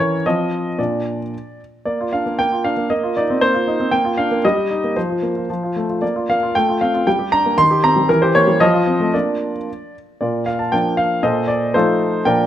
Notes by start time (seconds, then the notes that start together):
Already playing: E3 C#4 A#4
0.00 C#5
0.26 F3 C4 D#5
0.79 A#2 D4 F4 D5
1.85 A#3 D5
2.01 F4
2.13 D4 F5
2.26 A#3
2.39 A#3 G5
2.52 F4
2.64 D4 F5
2.77 A#3
2.90 A#3 D#5
3.03 F4
3.17 D#4 D5
3.30 C4
3.41 A#3 C5
3.54 F4
3.67 D#4
3.80 C4
3.91 A#3 G5
4.05 F4
4.17 D4 F5
4.31 A#3
4.45 G3 D#5
4.57 G4
4.70 D#4
4.84 A#3
4.96 F3 C5
5.10 F4
5.23 A#3
5.36 F4
5.50 F3
5.63 F4
5.76 A3
5.89 F4
6.02 A#3 D5
6.16 F4
6.29 A#3 F5
6.43 F4
6.55 A3 G5
6.69 F4
6.81 C4 F5
6.94 F4
7.07 G3 G5
7.19 G4
7.32 D4 A#5
7.46 A#3
7.58 D#3 C6
7.71 G4
7.84 C4 A#5
7.96 G3
8.09 E3 A#4
8.22 G4 C5
8.35 A#3 C#5
8.48 G3
8.60 F3 D#5
8.74 F4
8.87 C4
9.00 A3
9.14 A#3 D4 F4 D5
10.21 A#2 F4 A#4 D5
10.46 F5
10.59 A5
10.72 F3 A#3 D4 G5
10.97 F5
11.23 A#2 A4 C5 D#5
11.48 D5
11.74 F3 A3 D#4 F4 A4 C5
12.25 A#2 F3 A#3 D4 A#4 D5 G5